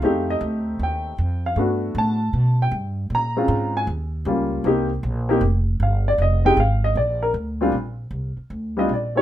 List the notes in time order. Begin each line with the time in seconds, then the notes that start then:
Already playing: F5
0.02 F2 A3 C4 D#4 G4
0.30 D#5
0.41 D2
0.79 D#2 G5
1.18 F2
1.46 F5
1.56 G2 A3 B3 D4 F#4
1.95 A2 A5
2.33 B2
2.62 G5
2.71 G2
3.10 A#2
3.15 A#5
3.36 G#3 C4 C#4 F4
3.48 G#2
3.77 G#5
3.87 D#2
4.25 C#2 G3 A#3 C#4 F4
4.64 C2 A#3 C4 D#4 G4
5.03 A#1
5.29 A#3 C4 D#4 G4
5.41 F1
5.80 G1 F5
6.08 D5
6.18 F1 D#5
6.45 G#3 C4 D#4 G4 G5
6.57 G#1 F5
6.84 D#5
6.95 A#1 D5
7.23 A#4
7.34 D2
7.61 A#2 G3 C4 D4 F4
7.72 A#1
8.11 C2
8.37 muted upright bass stroke
8.50 D2
8.77 G3 C4 D4 F4 D#5
8.89 A#1
8.94 D5
9.16 A3 C4 D#4 G4 C#5